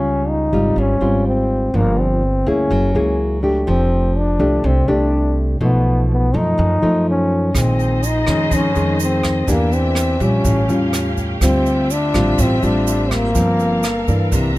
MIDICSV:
0, 0, Header, 1, 6, 480
1, 0, Start_track
1, 0, Tempo, 483871
1, 1723, Time_signature, 4, 2, 24, 8
1, 14465, End_track
2, 0, Start_track
2, 0, Title_t, "String section"
2, 0, Program_c, 0, 48
2, 7480, Note_on_c, 0, 68, 58
2, 7482, Note_on_c, 0, 63, 66
2, 7482, Note_on_c, 0, 75, 67
2, 7488, Note_on_c, 0, 72, 64
2, 9384, Note_off_c, 0, 68, 0
2, 9385, Note_off_c, 0, 63, 0
2, 9385, Note_off_c, 0, 75, 0
2, 9388, Note_off_c, 0, 72, 0
2, 9406, Note_on_c, 0, 76, 66
2, 9408, Note_on_c, 0, 67, 57
2, 9409, Note_on_c, 0, 62, 57
2, 10353, Note_on_c, 0, 61, 63
2, 10356, Note_off_c, 0, 76, 0
2, 10356, Note_on_c, 0, 77, 64
2, 10358, Note_off_c, 0, 62, 0
2, 11309, Note_off_c, 0, 61, 0
2, 11311, Note_off_c, 0, 77, 0
2, 11326, Note_on_c, 0, 76, 74
2, 11328, Note_on_c, 0, 60, 64
2, 11330, Note_on_c, 0, 65, 65
2, 13207, Note_off_c, 0, 67, 0
2, 13226, Note_off_c, 0, 76, 0
2, 13228, Note_off_c, 0, 65, 0
2, 13239, Note_on_c, 0, 69, 63
2, 13240, Note_on_c, 0, 70, 60
2, 13241, Note_on_c, 0, 77, 67
2, 14176, Note_off_c, 0, 60, 0
2, 14192, Note_off_c, 0, 69, 0
2, 14192, Note_off_c, 0, 70, 0
2, 14193, Note_off_c, 0, 77, 0
2, 14217, Note_on_c, 0, 62, 62
2, 14219, Note_on_c, 0, 76, 68
2, 14220, Note_on_c, 0, 82, 54
2, 14465, Note_off_c, 0, 62, 0
2, 14465, Note_off_c, 0, 76, 0
2, 14465, Note_off_c, 0, 82, 0
2, 14465, End_track
3, 0, Start_track
3, 0, Title_t, "Trombone"
3, 0, Program_c, 1, 57
3, 0, Note_on_c, 1, 61, 89
3, 292, Note_on_c, 1, 63, 85
3, 306, Note_off_c, 1, 61, 0
3, 785, Note_on_c, 1, 61, 90
3, 800, Note_off_c, 1, 63, 0
3, 1254, Note_off_c, 1, 61, 0
3, 1264, Note_on_c, 1, 60, 78
3, 1747, Note_on_c, 1, 58, 86
3, 1762, Note_off_c, 1, 60, 0
3, 1985, Note_on_c, 1, 60, 82
3, 2000, Note_off_c, 1, 58, 0
3, 2469, Note_on_c, 1, 61, 92
3, 2484, Note_off_c, 1, 60, 0
3, 3177, Note_off_c, 1, 61, 0
3, 3658, Note_on_c, 1, 60, 88
3, 4143, Note_on_c, 1, 62, 90
3, 4158, Note_off_c, 1, 60, 0
3, 4625, Note_on_c, 1, 60, 87
3, 4640, Note_off_c, 1, 62, 0
3, 4877, Note_on_c, 1, 62, 77
3, 4892, Note_off_c, 1, 60, 0
3, 5341, Note_off_c, 1, 62, 0
3, 5588, Note_on_c, 1, 59, 85
3, 6024, Note_off_c, 1, 59, 0
3, 6074, Note_on_c, 1, 59, 86
3, 6313, Note_on_c, 1, 63, 102
3, 6328, Note_off_c, 1, 59, 0
3, 7020, Note_off_c, 1, 63, 0
3, 7041, Note_on_c, 1, 61, 87
3, 7514, Note_on_c, 1, 60, 78
3, 7529, Note_off_c, 1, 61, 0
3, 8000, Note_on_c, 1, 63, 84
3, 8015, Note_off_c, 1, 60, 0
3, 8474, Note_on_c, 1, 61, 84
3, 8488, Note_off_c, 1, 63, 0
3, 8940, Note_off_c, 1, 61, 0
3, 8951, Note_on_c, 1, 60, 79
3, 9425, Note_on_c, 1, 58, 81
3, 9440, Note_off_c, 1, 60, 0
3, 9668, Note_on_c, 1, 60, 81
3, 9683, Note_off_c, 1, 58, 0
3, 10156, Note_on_c, 1, 61, 90
3, 10171, Note_off_c, 1, 60, 0
3, 10861, Note_off_c, 1, 61, 0
3, 11338, Note_on_c, 1, 60, 93
3, 11822, Note_on_c, 1, 62, 97
3, 11837, Note_off_c, 1, 60, 0
3, 12311, Note_on_c, 1, 60, 89
3, 12325, Note_off_c, 1, 62, 0
3, 12537, Note_on_c, 1, 62, 87
3, 12552, Note_off_c, 1, 60, 0
3, 13020, Note_on_c, 1, 58, 90
3, 13035, Note_off_c, 1, 62, 0
3, 14452, Note_off_c, 1, 58, 0
3, 14465, End_track
4, 0, Start_track
4, 0, Title_t, "Nylon-string guitar"
4, 0, Program_c, 2, 24
4, 0, Note_on_c, 2, 49, 44
4, 0, Note_on_c, 2, 55, 49
4, 0, Note_on_c, 2, 65, 53
4, 484, Note_off_c, 2, 55, 0
4, 489, Note_off_c, 2, 65, 0
4, 523, Note_on_c, 2, 55, 62
4, 531, Note_on_c, 2, 60, 49
4, 536, Note_on_c, 2, 65, 59
4, 738, Note_off_c, 2, 49, 0
4, 772, Note_on_c, 2, 44, 49
4, 965, Note_off_c, 2, 55, 0
4, 969, Note_off_c, 2, 60, 0
4, 970, Note_off_c, 2, 65, 0
4, 1001, Note_on_c, 2, 55, 54
4, 1006, Note_on_c, 2, 60, 59
4, 1011, Note_on_c, 2, 65, 60
4, 1684, Note_off_c, 2, 55, 0
4, 1686, Note_off_c, 2, 60, 0
4, 1688, Note_off_c, 2, 65, 0
4, 1704, Note_off_c, 2, 44, 0
4, 1726, Note_on_c, 2, 43, 45
4, 1726, Note_on_c, 2, 53, 54
4, 1731, Note_on_c, 2, 58, 45
4, 1736, Note_on_c, 2, 62, 51
4, 2202, Note_off_c, 2, 53, 0
4, 2203, Note_off_c, 2, 58, 0
4, 2207, Note_off_c, 2, 62, 0
4, 2449, Note_on_c, 2, 58, 61
4, 2451, Note_on_c, 2, 64, 58
4, 2459, Note_on_c, 2, 68, 60
4, 2662, Note_off_c, 2, 43, 0
4, 2692, Note_on_c, 2, 54, 56
4, 2888, Note_off_c, 2, 58, 0
4, 2890, Note_off_c, 2, 64, 0
4, 2892, Note_off_c, 2, 68, 0
4, 2925, Note_on_c, 2, 58, 60
4, 2931, Note_on_c, 2, 64, 59
4, 2935, Note_on_c, 2, 68, 57
4, 3366, Note_off_c, 2, 58, 0
4, 3369, Note_off_c, 2, 64, 0
4, 3371, Note_off_c, 2, 68, 0
4, 3399, Note_on_c, 2, 57, 50
4, 3403, Note_on_c, 2, 62, 52
4, 3410, Note_on_c, 2, 67, 55
4, 3625, Note_off_c, 2, 54, 0
4, 3643, Note_on_c, 2, 53, 50
4, 4324, Note_off_c, 2, 57, 0
4, 4325, Note_off_c, 2, 62, 0
4, 4329, Note_off_c, 2, 67, 0
4, 4360, Note_on_c, 2, 57, 51
4, 4366, Note_on_c, 2, 62, 65
4, 4370, Note_on_c, 2, 67, 59
4, 4580, Note_off_c, 2, 53, 0
4, 4603, Note_on_c, 2, 48, 47
4, 4804, Note_off_c, 2, 57, 0
4, 4807, Note_off_c, 2, 62, 0
4, 4809, Note_off_c, 2, 67, 0
4, 4839, Note_on_c, 2, 57, 61
4, 4844, Note_on_c, 2, 62, 65
4, 4851, Note_on_c, 2, 67, 62
4, 5524, Note_off_c, 2, 57, 0
4, 5527, Note_off_c, 2, 62, 0
4, 5529, Note_off_c, 2, 67, 0
4, 5540, Note_off_c, 2, 48, 0
4, 5561, Note_on_c, 2, 47, 47
4, 5562, Note_on_c, 2, 53, 49
4, 5567, Note_on_c, 2, 57, 52
4, 5570, Note_on_c, 2, 63, 57
4, 6245, Note_off_c, 2, 53, 0
4, 6248, Note_off_c, 2, 57, 0
4, 6248, Note_off_c, 2, 63, 0
4, 6286, Note_on_c, 2, 53, 62
4, 6289, Note_on_c, 2, 57, 57
4, 6290, Note_on_c, 2, 63, 57
4, 6499, Note_off_c, 2, 47, 0
4, 6525, Note_on_c, 2, 42, 51
4, 6727, Note_off_c, 2, 57, 0
4, 6728, Note_off_c, 2, 53, 0
4, 6730, Note_off_c, 2, 63, 0
4, 6767, Note_on_c, 2, 53, 54
4, 6773, Note_on_c, 2, 57, 57
4, 6775, Note_on_c, 2, 63, 59
4, 7448, Note_off_c, 2, 53, 0
4, 7450, Note_off_c, 2, 57, 0
4, 7452, Note_off_c, 2, 63, 0
4, 7462, Note_off_c, 2, 42, 0
4, 7483, Note_on_c, 2, 46, 49
4, 7488, Note_on_c, 2, 56, 44
4, 7489, Note_on_c, 2, 51, 48
4, 7963, Note_off_c, 2, 51, 0
4, 7964, Note_off_c, 2, 56, 0
4, 8204, Note_on_c, 2, 51, 56
4, 8210, Note_on_c, 2, 56, 55
4, 8216, Note_on_c, 2, 61, 68
4, 8421, Note_off_c, 2, 46, 0
4, 8444, Note_on_c, 2, 41, 49
4, 8646, Note_off_c, 2, 51, 0
4, 8650, Note_off_c, 2, 56, 0
4, 8651, Note_off_c, 2, 61, 0
4, 8686, Note_on_c, 2, 51, 60
4, 8692, Note_on_c, 2, 56, 56
4, 9368, Note_off_c, 2, 51, 0
4, 9371, Note_off_c, 2, 56, 0
4, 9381, Note_off_c, 2, 41, 0
4, 9402, Note_on_c, 2, 52, 52
4, 9408, Note_on_c, 2, 62, 49
4, 9410, Note_on_c, 2, 58, 48
4, 9413, Note_on_c, 2, 67, 57
4, 10088, Note_off_c, 2, 58, 0
4, 10088, Note_off_c, 2, 62, 0
4, 10090, Note_off_c, 2, 67, 0
4, 10124, Note_off_c, 2, 52, 0
4, 10127, Note_on_c, 2, 55, 60
4, 10133, Note_on_c, 2, 61, 54
4, 10137, Note_on_c, 2, 65, 60
4, 10366, Note_on_c, 2, 45, 56
4, 10569, Note_off_c, 2, 61, 0
4, 10570, Note_off_c, 2, 55, 0
4, 10573, Note_off_c, 2, 65, 0
4, 10610, Note_on_c, 2, 55, 51
4, 10617, Note_on_c, 2, 61, 54
4, 10617, Note_on_c, 2, 65, 60
4, 11290, Note_off_c, 2, 55, 0
4, 11291, Note_off_c, 2, 61, 0
4, 11293, Note_off_c, 2, 65, 0
4, 11302, Note_off_c, 2, 45, 0
4, 11328, Note_on_c, 2, 55, 51
4, 11332, Note_on_c, 2, 50, 46
4, 11336, Note_on_c, 2, 60, 53
4, 11339, Note_on_c, 2, 65, 51
4, 11804, Note_off_c, 2, 55, 0
4, 11808, Note_off_c, 2, 60, 0
4, 11808, Note_off_c, 2, 65, 0
4, 12048, Note_on_c, 2, 55, 52
4, 12052, Note_on_c, 2, 60, 60
4, 12054, Note_on_c, 2, 65, 68
4, 12265, Note_off_c, 2, 50, 0
4, 12287, Note_on_c, 2, 45, 54
4, 12488, Note_off_c, 2, 55, 0
4, 12489, Note_off_c, 2, 60, 0
4, 12491, Note_off_c, 2, 65, 0
4, 12526, Note_on_c, 2, 55, 60
4, 12534, Note_on_c, 2, 60, 52
4, 12537, Note_on_c, 2, 65, 59
4, 13207, Note_off_c, 2, 55, 0
4, 13211, Note_off_c, 2, 60, 0
4, 13212, Note_off_c, 2, 65, 0
4, 13222, Note_off_c, 2, 45, 0
4, 13244, Note_on_c, 2, 53, 52
4, 13249, Note_on_c, 2, 43, 50
4, 13250, Note_on_c, 2, 58, 47
4, 13254, Note_on_c, 2, 60, 53
4, 13721, Note_off_c, 2, 53, 0
4, 13724, Note_off_c, 2, 58, 0
4, 13726, Note_off_c, 2, 60, 0
4, 13969, Note_on_c, 2, 52, 59
4, 13974, Note_on_c, 2, 58, 54
4, 13976, Note_on_c, 2, 62, 67
4, 14182, Note_off_c, 2, 43, 0
4, 14217, Note_on_c, 2, 48, 50
4, 14408, Note_off_c, 2, 52, 0
4, 14410, Note_off_c, 2, 58, 0
4, 14412, Note_off_c, 2, 62, 0
4, 14465, Note_off_c, 2, 48, 0
4, 14465, End_track
5, 0, Start_track
5, 0, Title_t, "Upright bass"
5, 0, Program_c, 3, 32
5, 0, Note_on_c, 3, 37, 78
5, 480, Note_off_c, 3, 37, 0
5, 523, Note_on_c, 3, 32, 79
5, 746, Note_off_c, 3, 32, 0
5, 753, Note_on_c, 3, 32, 80
5, 981, Note_off_c, 3, 32, 0
5, 997, Note_on_c, 3, 32, 73
5, 1680, Note_off_c, 3, 32, 0
5, 1724, Note_on_c, 3, 31, 86
5, 2404, Note_off_c, 3, 31, 0
5, 2444, Note_on_c, 3, 38, 86
5, 2667, Note_off_c, 3, 38, 0
5, 2683, Note_on_c, 3, 30, 89
5, 2907, Note_off_c, 3, 30, 0
5, 2931, Note_on_c, 3, 37, 80
5, 3608, Note_off_c, 3, 37, 0
5, 3646, Note_on_c, 3, 29, 91
5, 4326, Note_off_c, 3, 29, 0
5, 4359, Note_on_c, 3, 36, 88
5, 4585, Note_off_c, 3, 36, 0
5, 4601, Note_on_c, 3, 36, 89
5, 4826, Note_off_c, 3, 36, 0
5, 4841, Note_on_c, 3, 36, 80
5, 5524, Note_off_c, 3, 36, 0
5, 5561, Note_on_c, 3, 35, 85
5, 6244, Note_off_c, 3, 35, 0
5, 6292, Note_on_c, 3, 42, 89
5, 6512, Note_off_c, 3, 42, 0
5, 6534, Note_on_c, 3, 42, 93
5, 6753, Note_off_c, 3, 42, 0
5, 6771, Note_on_c, 3, 42, 72
5, 7449, Note_off_c, 3, 42, 0
5, 7487, Note_on_c, 3, 34, 85
5, 8167, Note_off_c, 3, 34, 0
5, 8206, Note_on_c, 3, 41, 82
5, 8429, Note_off_c, 3, 41, 0
5, 8447, Note_on_c, 3, 41, 83
5, 8669, Note_off_c, 3, 41, 0
5, 8690, Note_on_c, 3, 41, 80
5, 9368, Note_off_c, 3, 41, 0
5, 9399, Note_on_c, 3, 40, 89
5, 10083, Note_off_c, 3, 40, 0
5, 10120, Note_on_c, 3, 34, 85
5, 10346, Note_off_c, 3, 34, 0
5, 10364, Note_on_c, 3, 33, 90
5, 10588, Note_off_c, 3, 33, 0
5, 10602, Note_on_c, 3, 40, 85
5, 11284, Note_off_c, 3, 40, 0
5, 11323, Note_on_c, 3, 38, 87
5, 12004, Note_off_c, 3, 38, 0
5, 12045, Note_on_c, 3, 33, 93
5, 12268, Note_off_c, 3, 33, 0
5, 12284, Note_on_c, 3, 33, 92
5, 12508, Note_off_c, 3, 33, 0
5, 12524, Note_on_c, 3, 33, 85
5, 13205, Note_off_c, 3, 33, 0
5, 13244, Note_on_c, 3, 31, 86
5, 13924, Note_off_c, 3, 31, 0
5, 13967, Note_on_c, 3, 43, 82
5, 14189, Note_off_c, 3, 43, 0
5, 14207, Note_on_c, 3, 36, 93
5, 14429, Note_off_c, 3, 36, 0
5, 14465, End_track
6, 0, Start_track
6, 0, Title_t, "Drums"
6, 7486, Note_on_c, 9, 37, 52
6, 7486, Note_on_c, 9, 42, 44
6, 7487, Note_on_c, 9, 36, 52
6, 7493, Note_on_c, 9, 82, 56
6, 7585, Note_off_c, 9, 37, 0
6, 7585, Note_off_c, 9, 42, 0
6, 7586, Note_off_c, 9, 36, 0
6, 7592, Note_off_c, 9, 82, 0
6, 7725, Note_on_c, 9, 42, 22
6, 7736, Note_on_c, 9, 82, 22
6, 7824, Note_off_c, 9, 42, 0
6, 7835, Note_off_c, 9, 82, 0
6, 7962, Note_on_c, 9, 42, 44
6, 7970, Note_on_c, 9, 82, 57
6, 8061, Note_off_c, 9, 42, 0
6, 8069, Note_off_c, 9, 82, 0
6, 8200, Note_on_c, 9, 37, 57
6, 8200, Note_on_c, 9, 42, 26
6, 8204, Note_on_c, 9, 36, 21
6, 8209, Note_on_c, 9, 82, 25
6, 8299, Note_off_c, 9, 37, 0
6, 8299, Note_off_c, 9, 42, 0
6, 8303, Note_off_c, 9, 36, 0
6, 8308, Note_off_c, 9, 82, 0
6, 8442, Note_on_c, 9, 42, 36
6, 8444, Note_on_c, 9, 36, 55
6, 8450, Note_on_c, 9, 82, 56
6, 8541, Note_off_c, 9, 42, 0
6, 8543, Note_off_c, 9, 36, 0
6, 8549, Note_off_c, 9, 82, 0
6, 8681, Note_on_c, 9, 42, 26
6, 8685, Note_on_c, 9, 82, 27
6, 8780, Note_off_c, 9, 42, 0
6, 8785, Note_off_c, 9, 82, 0
6, 8920, Note_on_c, 9, 42, 40
6, 8926, Note_on_c, 9, 82, 63
6, 9019, Note_off_c, 9, 42, 0
6, 9026, Note_off_c, 9, 82, 0
6, 9161, Note_on_c, 9, 37, 57
6, 9161, Note_on_c, 9, 42, 25
6, 9162, Note_on_c, 9, 36, 22
6, 9164, Note_on_c, 9, 82, 27
6, 9260, Note_off_c, 9, 37, 0
6, 9260, Note_off_c, 9, 42, 0
6, 9261, Note_off_c, 9, 36, 0
6, 9263, Note_off_c, 9, 82, 0
6, 9398, Note_on_c, 9, 42, 40
6, 9400, Note_on_c, 9, 36, 55
6, 9405, Note_on_c, 9, 82, 61
6, 9497, Note_off_c, 9, 42, 0
6, 9500, Note_off_c, 9, 36, 0
6, 9505, Note_off_c, 9, 82, 0
6, 9635, Note_on_c, 9, 42, 21
6, 9648, Note_on_c, 9, 82, 23
6, 9734, Note_off_c, 9, 42, 0
6, 9747, Note_off_c, 9, 82, 0
6, 9873, Note_on_c, 9, 37, 57
6, 9873, Note_on_c, 9, 42, 38
6, 9887, Note_on_c, 9, 82, 56
6, 9972, Note_off_c, 9, 37, 0
6, 9972, Note_off_c, 9, 42, 0
6, 9986, Note_off_c, 9, 82, 0
6, 10117, Note_on_c, 9, 42, 24
6, 10120, Note_on_c, 9, 36, 21
6, 10125, Note_on_c, 9, 82, 24
6, 10216, Note_off_c, 9, 42, 0
6, 10219, Note_off_c, 9, 36, 0
6, 10224, Note_off_c, 9, 82, 0
6, 10358, Note_on_c, 9, 42, 36
6, 10361, Note_on_c, 9, 36, 50
6, 10366, Note_on_c, 9, 82, 59
6, 10457, Note_off_c, 9, 42, 0
6, 10460, Note_off_c, 9, 36, 0
6, 10465, Note_off_c, 9, 82, 0
6, 10602, Note_on_c, 9, 42, 25
6, 10607, Note_on_c, 9, 82, 24
6, 10701, Note_off_c, 9, 42, 0
6, 10707, Note_off_c, 9, 82, 0
6, 10843, Note_on_c, 9, 37, 54
6, 10843, Note_on_c, 9, 42, 40
6, 10849, Note_on_c, 9, 82, 59
6, 10943, Note_off_c, 9, 37, 0
6, 10943, Note_off_c, 9, 42, 0
6, 10948, Note_off_c, 9, 82, 0
6, 11082, Note_on_c, 9, 36, 22
6, 11083, Note_on_c, 9, 42, 29
6, 11084, Note_on_c, 9, 82, 25
6, 11181, Note_off_c, 9, 36, 0
6, 11183, Note_off_c, 9, 42, 0
6, 11183, Note_off_c, 9, 82, 0
6, 11321, Note_on_c, 9, 37, 51
6, 11321, Note_on_c, 9, 42, 43
6, 11322, Note_on_c, 9, 36, 55
6, 11326, Note_on_c, 9, 82, 63
6, 11420, Note_off_c, 9, 37, 0
6, 11420, Note_off_c, 9, 42, 0
6, 11421, Note_off_c, 9, 36, 0
6, 11425, Note_off_c, 9, 82, 0
6, 11566, Note_on_c, 9, 42, 25
6, 11567, Note_on_c, 9, 82, 25
6, 11666, Note_off_c, 9, 42, 0
6, 11667, Note_off_c, 9, 82, 0
6, 11806, Note_on_c, 9, 42, 46
6, 11809, Note_on_c, 9, 82, 64
6, 11905, Note_off_c, 9, 42, 0
6, 11908, Note_off_c, 9, 82, 0
6, 12045, Note_on_c, 9, 36, 22
6, 12045, Note_on_c, 9, 82, 26
6, 12046, Note_on_c, 9, 37, 55
6, 12046, Note_on_c, 9, 42, 27
6, 12144, Note_off_c, 9, 36, 0
6, 12144, Note_off_c, 9, 82, 0
6, 12145, Note_off_c, 9, 37, 0
6, 12145, Note_off_c, 9, 42, 0
6, 12286, Note_on_c, 9, 36, 53
6, 12286, Note_on_c, 9, 82, 65
6, 12292, Note_on_c, 9, 42, 40
6, 12385, Note_off_c, 9, 36, 0
6, 12385, Note_off_c, 9, 82, 0
6, 12391, Note_off_c, 9, 42, 0
6, 12526, Note_on_c, 9, 82, 24
6, 12527, Note_on_c, 9, 42, 26
6, 12626, Note_off_c, 9, 42, 0
6, 12626, Note_off_c, 9, 82, 0
6, 12766, Note_on_c, 9, 42, 38
6, 12770, Note_on_c, 9, 82, 67
6, 12866, Note_off_c, 9, 42, 0
6, 12869, Note_off_c, 9, 82, 0
6, 13006, Note_on_c, 9, 36, 23
6, 13007, Note_on_c, 9, 37, 60
6, 13007, Note_on_c, 9, 42, 27
6, 13008, Note_on_c, 9, 82, 27
6, 13105, Note_off_c, 9, 36, 0
6, 13106, Note_off_c, 9, 37, 0
6, 13106, Note_off_c, 9, 42, 0
6, 13107, Note_off_c, 9, 82, 0
6, 13243, Note_on_c, 9, 42, 40
6, 13244, Note_on_c, 9, 82, 64
6, 13245, Note_on_c, 9, 36, 56
6, 13342, Note_off_c, 9, 42, 0
6, 13344, Note_off_c, 9, 36, 0
6, 13344, Note_off_c, 9, 82, 0
6, 13486, Note_on_c, 9, 82, 22
6, 13488, Note_on_c, 9, 42, 24
6, 13586, Note_off_c, 9, 82, 0
6, 13588, Note_off_c, 9, 42, 0
6, 13721, Note_on_c, 9, 82, 58
6, 13728, Note_on_c, 9, 37, 57
6, 13728, Note_on_c, 9, 42, 38
6, 13820, Note_off_c, 9, 82, 0
6, 13827, Note_off_c, 9, 37, 0
6, 13827, Note_off_c, 9, 42, 0
6, 13966, Note_on_c, 9, 36, 23
6, 13966, Note_on_c, 9, 82, 25
6, 13968, Note_on_c, 9, 42, 23
6, 14065, Note_off_c, 9, 36, 0
6, 14066, Note_off_c, 9, 82, 0
6, 14067, Note_off_c, 9, 42, 0
6, 14206, Note_on_c, 9, 36, 53
6, 14207, Note_on_c, 9, 42, 39
6, 14207, Note_on_c, 9, 82, 58
6, 14305, Note_off_c, 9, 36, 0
6, 14306, Note_off_c, 9, 42, 0
6, 14306, Note_off_c, 9, 82, 0
6, 14465, End_track
0, 0, End_of_file